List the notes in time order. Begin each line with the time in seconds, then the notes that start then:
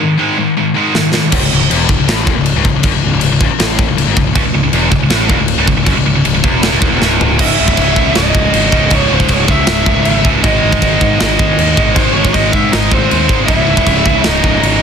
0.00 G#2 D#3
0.17 G#2 D#3 G#3
0.38 G#2 D#3
0.57 G#2 D#3
0.74 G#2 D#3 G#3
0.93 G#2 D#3, snare
1.13 G#2 D#3, snare
1.32 C#1 C#2, kick, crash
1.41 C#1 C#2
1.52 C#1 C#2
1.61 C#1 C#2
1.70 E1 E2, crash
1.89 C#1 C#2, kick
1.98 C#1 C#2
2.08 A1 A2, snare, crash
2.27 D#1 D#2, kick
2.37 C#1 C#2
2.46 crash
2.55 C#1 C#2
2.65 C#1 C#2, kick
2.75 C#1 C#2
2.83 F#1 F#2, kick, crash
2.94 C#1 C#2
3.04 C#1 C#2
3.13 C#1 C#2
3.21 C#1 C#2, crash
3.31 C#1 C#2
3.41 C#1 C#2, kick
3.50 muted distorted electric guitar stroke, muted picked electric bass stroke
3.59 A1 A2, snare, crash
3.79 kick
3.88 C#1 C#2
3.97 C#1 C#2, crash
4.07 G#1 G#2
4.17 C#1 C#2, kick
4.27 C#1 C#2
4.35 C#1 C#2, kick, crash
4.45 C#1 C#2
4.53 C#1 C#2
4.63 C#1 C#2
4.72 E1 E2, crash
4.91 C#1 C#2, kick
5.00 C#1 C#2
5.10 A1 A2, snare, crash
5.28 D#1 D#2, kick
5.39 C#1 C#2
5.48 crash
5.57 C#1 C#2
5.68 C#1 C#2, kick
5.76 C#1 C#2
5.86 F#1 F#2, kick, crash
5.95 C#1 C#2
6.06 C#1 C#2
6.16 C#1 C#2
6.25 C#1 C#2, crash
6.35 C#1 C#2
6.44 E1 E2, kick
6.63 snare, crash
6.72 C#1 C#2
6.82 D#1 D#2, kick
6.91 E1 E2
7.01 C#1 C#2, snare
7.21 floor tom
7.38 C#1 C#2 G#2 C#3 E5, kick, crash
7.60 C#1
7.68 kick
7.77 C#1, kick, crash
7.96 C#2, kick
8.15 C#1 D#5, snare, crash
8.34 C#1, kick
8.53 G#1, crash
8.72 C#1 C#2 G#2 C#3, kick
8.90 C#1 C#2 G#2 C#3, kick, crash
8.94 C#5
9.11 C#1 C5
9.20 kick
9.28 C#1 C#5, kick, crash
9.48 C#2 E5, kick
9.67 C#1, snare, crash
9.86 C#1, kick
10.05 G#1, crash
10.24 C#1 C#2 G#2 C#3, kick
10.41 G#1 G#2 D#3 G#3 D#5, kick, crash
10.64 G#1
10.72 kick
10.82 G#1, kick, crash
11.01 G#2, kick
11.20 G#1 D#5, snare, crash
11.39 G#1, kick
11.58 D#2, crash
11.76 G#1 G#2 D#3 G#3, kick
11.94 G#1 G#2 D#3 G#3 C5, kick, crash
12.13 G#1 C#5
12.25 kick
12.34 G#1 D#5, kick, crash
12.52 G#2 E5, kick
12.72 G#1 D#4 D#5, snare, crash
12.91 G#1 C4 C5, kick
13.10 D#2 C4 C5, crash
13.28 G#1 G#2 D#3 G#3, kick
13.46 C#1 C#2 G#2 C#3 E4 E5, kick, crash
13.68 C#1
13.77 kick
13.86 C#1, kick, crash
14.06 C#2, kick
14.24 C#1 D#4 D#5, snare, crash
14.44 C#1, kick
14.63 G#1, crash